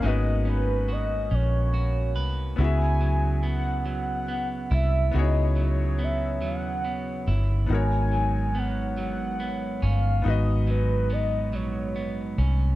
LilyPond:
<<
  \new Staff \with { instrumentName = "Soft synth lead" } { \time 6/8 \key aes \mixolydian \tempo 4. = 47 ees''8 ces''8 ees''8 des''4 r8 | aes''4 ges''8 ges''4 fes''8 | ees''8 des''8 fes''8 ges''4 r8 | aes''4 ges''8 ges''4 f''8 |
ees''8 ces''8 ees''8 des''4 r8 | }
  \new Staff \with { instrumentName = "Grand piano" } { \time 6/8 \key aes \mixolydian <bes ces' des' ees' ges' ces''>2. | <ces' fes' ges' aes' fes''>2. | <ces' ees' fes' ges' aes' des''>2. | <ces' ees' ges' bes' des''>2. |
<ces' ees' ges' ces'' ees''>2. | }
  \new Staff \with { instrumentName = "Clean electric guitar" } { \time 6/8 \key aes \mixolydian <aes des' ges' ces''>8 des'8 ges'8 des'8 ges'8 ces''8 | des8 ges8 ces'8 ges8 ces'8 fes'8 | des8 ges8 ces'8 ges8 ces'8 fes'8 | aes,8 ges8 ces'8 ges8 ces'8 des'8 |
aes,8 ges8 ces'8 ges8 ces'8 des'8 | }
  \new Staff \with { instrumentName = "Fingered electric bass" } { \clef bass \time 6/8 \key aes \mixolydian aes,,4. bes,,4 c,8 | des,2~ des,8 c,8 | des,4. ees,4 g,,8 | aes,,2~ aes,,8 g,,8 |
aes,,4. bes,,4 c,8 | }
>>